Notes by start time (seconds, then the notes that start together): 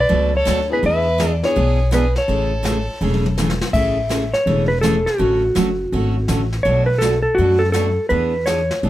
0.00 B4 D5
0.09 C#2 B2 F#3 A3 D4 F#4, brush sweep
0.36 A4 C#5
0.45 D2 B2 F#3 A3 D4 F#4, snare, hi-hat pedal
0.70 B3 D4 E4 G#4 B4
0.83 E2 E3 B3 D4 G#4 B4 E5, brush sweep
1.18 E3 B3 D4 G#4, snare, hi-hat pedal
1.28 A4
1.33 D5
1.43 B3 D4 E4 G#4 C#5, snare
1.56 B1 E3 B3 D4 G#4, brush sweep
1.91 E3 B3 D4 G#4 B4, snare, hi-hat pedal
2.16 A4 C#5, snare
2.28 A1 C#3 E3 A3 C#4 G#4, brush sweep
2.63 C#3 E3 A3 C#4 G#4, snare, hi-hat pedal
3.01 E1 C#3 E3 A3 C#4 G#4
3.14 high tom
3.26 high tom
3.38 C#3 E3 A3 C#4 G#4, snare, hi-hat pedal
3.50 snare
3.61 snare
3.73 A1 C#3 E3 A3 C#4 G#4 E5, brush sweep, kick, crash
4.09 C#3 E3 A3 C#4 G#4, snare, hi-hat pedal
4.34 C#5, snare
4.46 E1 C#3 E3 A3 C#4 G#4, brush sweep
4.68 B4
4.81 C#3 E3 A3 C#4 G#4 A4, snare, hi-hat pedal
5.06 F#4, snare
5.18 A1 D3 F#3 A3 C#4 F#4, brush sweep
5.55 F#1 D3 F#3 A3 C#4 F#4, snare, hi-hat pedal
5.92 G#1 D3 F#3 A3 C#4 F#4, brush sweep
6.28 A1 D3 F#3 A3 C#4 F#4, snare, hi-hat pedal
6.53 snare
6.63 B1 B2 F#3 A3 D4 F#4 C#5, brush sweep
6.86 B4
6.98 B2 F#3 A3 F#4 A4, snare, hi-hat pedal
7.03 D4
7.22 A4
7.35 F#2 B2 F#3 A3 F#4, brush sweep
7.39 D4 F#4
7.59 A4
7.72 B2 F#3 A3 D4 F#4 A4, snare, hi-hat pedal
8.09 E2 E3 B3 D4 G#4 B4, brush sweep
8.46 E3 B3 D4 G#4 C#5, snare, hi-hat pedal
8.71 snare
8.83 B1 E3 B3 D4 G#4, brush sweep